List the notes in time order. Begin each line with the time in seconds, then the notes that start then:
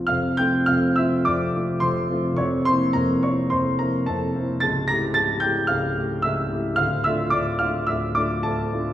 Already playing: C2 F3 C4 F4
0.07 F1 F2 F5 F6
0.37 A3 C4 F4 G5 G6
0.66 F1 F2 F5 F6
0.96 A3 C4 F4 E5 E6
1.25 F1 F2 D5 D6
1.55 A3 C4 F4
1.80 F1 F2 C5 C6
2.10 A3 C4 F4
2.33 F1 C#6
2.38 F2 C#5
2.65 A#3 C4 E4 C5 C6
2.93 F1 F2 A#4 A#5
3.23 A#3 C4 E4 C#5 C#6
3.50 F1 F2 C5 C6
3.79 A#3 C4 E4 A#4 A#5
4.06 F1 F2 A4 A5
4.36 A#3 C4 E4
4.60 C#1 C#2 A5 A6
4.88 A3 E4 G4 A#5 A#6
5.14 C#1 C#2 A5 A6
5.40 A3 E4 G4 G5 G6
5.67 C#1 C#2 F5 F6
5.98 A3 E4 G4
6.22 C#1 C#2 E5 E6
6.52 A3 E4 G4
6.76 D1 D2 F5 F6
7.04 A3 D4 F4 E5 E6
7.30 D1 D2 D5 D6
7.59 A3 D4 F4 F5 F6
7.87 D1 D2 E5 E6
8.15 A3 D4 F4 D5 D6
8.43 D1 D2 A4 A5
8.73 A3 D4 F4